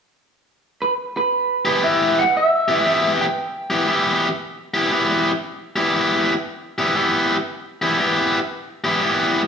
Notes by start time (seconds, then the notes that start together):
0.82 B4
1.17 B4
1.65 E3 B3 E4 G4 B4
1.82 E3 B3 E4 G4 E5
2.19 F#5
2.37 E5
2.68 E3 B3 E4 G4
2.86 E3 B3 E4 G4
3.21 G5
3.70 E3 B3 E4 G4
3.88 E3 B3 E4 G4
4.74 E3 B3 E4 G4
4.92 E3 B3 E4 G4
5.76 E3 B3 E4 G4
5.93 E3 B3 E4 G4
6.78 E3 B3 E4 G4
6.96 E3 B3 E4 G4
7.82 E3 B3 E4 G4
7.99 E3 B3 E4 G4
8.84 E3 B3 E4 G4
9.02 E3 B3 E4 G4